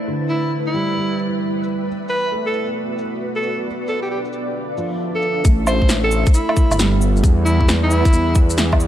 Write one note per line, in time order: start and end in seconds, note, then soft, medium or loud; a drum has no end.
0.00 2.59 E4 medium
0.00 4.38 B4 medium
0.00 5.46 D5 medium
0.08 0.75 D3 soft
0.29 0.54 E4 medium
0.29 cabasa medium
0.67 1.28 E4 medium
0.67 2.60 E5 medium
0.67 cabasa soft
0.74 0.96 G3 medium
0.74 cabasa medium
0.98 1.65 G3 medium
1.19 cabasa medium
1.64 cabasa medium
1.86 4.39 B3 medium
2.08 3.66 F#4 medium
2.08 2.33 B4 medium
2.08 cabasa medium
2.32 2.99 A3 soft
2.47 2.69 A4 medium
2.54 cabasa medium
2.72 4.40 D5 medium
2.98 cabasa medium
3.36 3.59 A4 medium
3.43 cabasa medium
3.66 6.18 D4 medium
3.88 4.00 A4 medium
3.88 cabasa medium
4.02 4.07 G4 medium
4.11 4.20 G4 medium
4.11 6.18 A4 medium
4.25 5.45 F5 medium
4.25 cabasa soft
4.33 cabasa medium
4.41 6.18 E5 medium
4.78 5.45 F3 medium
4.78 cabasa medium
5.15 5.45 A4 medium
5.22 cabasa medium
5.44 6.25 A1 medium
5.44 6.12 A3 medium
5.44 7.25 A3 medium
5.44 kick loud
5.44 shaker medium
5.67 5.91 C5 medium
5.67 cabasa medium
5.67 low woodblock medium
5.82 kick medium
5.89 8.87 E4 medium
5.89 snare loud
5.89 shaker medium
6.04 6.27 A4 medium
6.11 cabasa medium
6.26 8.87 B4 medium
6.26 kick loud
6.26 shaker soft
6.34 6.98 E4 medium
6.34 shaker medium
6.49 low woodblock medium
6.57 kick loud
6.57 cabasa medium
6.71 7.23 G1 loud
6.71 low woodblock medium
6.71 shaker medium
6.79 7.42 G3 medium
6.79 snare loud
6.79 shaker medium
7.00 7.60 B3 medium
7.00 cabasa medium
7.17 shaker soft
7.23 8.04 E2 loud
7.23 kick loud
7.23 shaker medium
7.45 7.69 E4 medium
7.45 cabasa medium
7.61 kick medium
7.69 8.87 E5 medium
7.69 snare loud
7.69 shaker medium
7.83 8.45 E4 loud
7.91 cabasa medium
8.05 kick loud
8.05 shaker soft
8.13 8.87 E2 loud
8.13 shaker medium
8.35 kick loud
8.35 cabasa medium
8.50 shaker medium
8.58 8.87 E3 medium
8.58 snare loud
8.58 shaker medium
8.72 kick medium
8.72 low woodblock medium
8.80 cabasa medium